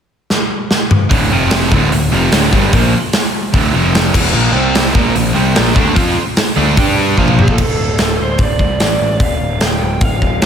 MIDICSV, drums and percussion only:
0, 0, Header, 1, 2, 480
1, 0, Start_track
1, 0, Key_signature, -1, "minor"
1, 0, Tempo, 404313
1, 1333, Time_signature, 4, 2, 24, 8
1, 12416, End_track
2, 0, Start_track
2, 0, Title_t, "Drums"
2, 359, Note_on_c, 9, 38, 67
2, 477, Note_off_c, 9, 38, 0
2, 838, Note_on_c, 9, 38, 88
2, 957, Note_off_c, 9, 38, 0
2, 1079, Note_on_c, 9, 45, 107
2, 1197, Note_off_c, 9, 45, 0
2, 1316, Note_on_c, 9, 46, 60
2, 1317, Note_on_c, 9, 36, 112
2, 1435, Note_off_c, 9, 46, 0
2, 1436, Note_off_c, 9, 36, 0
2, 1791, Note_on_c, 9, 46, 64
2, 1795, Note_on_c, 9, 38, 122
2, 1909, Note_off_c, 9, 46, 0
2, 1914, Note_off_c, 9, 38, 0
2, 2037, Note_on_c, 9, 36, 98
2, 2156, Note_off_c, 9, 36, 0
2, 2280, Note_on_c, 9, 46, 65
2, 2398, Note_off_c, 9, 46, 0
2, 2757, Note_on_c, 9, 46, 66
2, 2761, Note_on_c, 9, 38, 111
2, 2875, Note_off_c, 9, 46, 0
2, 2880, Note_off_c, 9, 38, 0
2, 3000, Note_on_c, 9, 36, 83
2, 3119, Note_off_c, 9, 36, 0
2, 3239, Note_on_c, 9, 46, 60
2, 3242, Note_on_c, 9, 36, 107
2, 3358, Note_off_c, 9, 46, 0
2, 3361, Note_off_c, 9, 36, 0
2, 3716, Note_on_c, 9, 46, 58
2, 3721, Note_on_c, 9, 38, 103
2, 3835, Note_off_c, 9, 46, 0
2, 3840, Note_off_c, 9, 38, 0
2, 4201, Note_on_c, 9, 36, 113
2, 4208, Note_on_c, 9, 46, 56
2, 4319, Note_off_c, 9, 36, 0
2, 4327, Note_off_c, 9, 46, 0
2, 4688, Note_on_c, 9, 46, 59
2, 4693, Note_on_c, 9, 38, 113
2, 4807, Note_off_c, 9, 46, 0
2, 4812, Note_off_c, 9, 38, 0
2, 4919, Note_on_c, 9, 36, 103
2, 4926, Note_on_c, 9, 49, 99
2, 5038, Note_off_c, 9, 36, 0
2, 5045, Note_off_c, 9, 49, 0
2, 5641, Note_on_c, 9, 46, 62
2, 5646, Note_on_c, 9, 38, 116
2, 5760, Note_off_c, 9, 46, 0
2, 5764, Note_off_c, 9, 38, 0
2, 5876, Note_on_c, 9, 36, 115
2, 5995, Note_off_c, 9, 36, 0
2, 6122, Note_on_c, 9, 46, 61
2, 6240, Note_off_c, 9, 46, 0
2, 6598, Note_on_c, 9, 46, 65
2, 6602, Note_on_c, 9, 38, 120
2, 6716, Note_off_c, 9, 46, 0
2, 6721, Note_off_c, 9, 38, 0
2, 6836, Note_on_c, 9, 36, 99
2, 6955, Note_off_c, 9, 36, 0
2, 7080, Note_on_c, 9, 36, 114
2, 7084, Note_on_c, 9, 46, 61
2, 7199, Note_off_c, 9, 36, 0
2, 7203, Note_off_c, 9, 46, 0
2, 7559, Note_on_c, 9, 46, 63
2, 7564, Note_on_c, 9, 38, 110
2, 7678, Note_off_c, 9, 46, 0
2, 7683, Note_off_c, 9, 38, 0
2, 8042, Note_on_c, 9, 36, 115
2, 8044, Note_on_c, 9, 46, 61
2, 8161, Note_off_c, 9, 36, 0
2, 8163, Note_off_c, 9, 46, 0
2, 8519, Note_on_c, 9, 36, 61
2, 8637, Note_off_c, 9, 36, 0
2, 8641, Note_on_c, 9, 47, 68
2, 8760, Note_off_c, 9, 47, 0
2, 8770, Note_on_c, 9, 45, 86
2, 8879, Note_on_c, 9, 36, 93
2, 8889, Note_off_c, 9, 45, 0
2, 8997, Note_off_c, 9, 36, 0
2, 9000, Note_on_c, 9, 57, 92
2, 9002, Note_on_c, 9, 36, 89
2, 9119, Note_off_c, 9, 57, 0
2, 9121, Note_off_c, 9, 36, 0
2, 9479, Note_on_c, 9, 46, 57
2, 9484, Note_on_c, 9, 38, 105
2, 9598, Note_off_c, 9, 46, 0
2, 9602, Note_off_c, 9, 38, 0
2, 9954, Note_on_c, 9, 46, 53
2, 9958, Note_on_c, 9, 36, 111
2, 10073, Note_off_c, 9, 46, 0
2, 10077, Note_off_c, 9, 36, 0
2, 10202, Note_on_c, 9, 36, 73
2, 10320, Note_off_c, 9, 36, 0
2, 10447, Note_on_c, 9, 46, 57
2, 10452, Note_on_c, 9, 38, 94
2, 10566, Note_off_c, 9, 46, 0
2, 10571, Note_off_c, 9, 38, 0
2, 10922, Note_on_c, 9, 36, 103
2, 10928, Note_on_c, 9, 46, 54
2, 11041, Note_off_c, 9, 36, 0
2, 11047, Note_off_c, 9, 46, 0
2, 11404, Note_on_c, 9, 46, 54
2, 11409, Note_on_c, 9, 38, 102
2, 11523, Note_off_c, 9, 46, 0
2, 11528, Note_off_c, 9, 38, 0
2, 11532, Note_on_c, 9, 38, 26
2, 11651, Note_off_c, 9, 38, 0
2, 11883, Note_on_c, 9, 46, 48
2, 11887, Note_on_c, 9, 36, 108
2, 12001, Note_off_c, 9, 46, 0
2, 12006, Note_off_c, 9, 36, 0
2, 12132, Note_on_c, 9, 36, 71
2, 12250, Note_off_c, 9, 36, 0
2, 12368, Note_on_c, 9, 46, 48
2, 12373, Note_on_c, 9, 38, 112
2, 12416, Note_off_c, 9, 38, 0
2, 12416, Note_off_c, 9, 46, 0
2, 12416, End_track
0, 0, End_of_file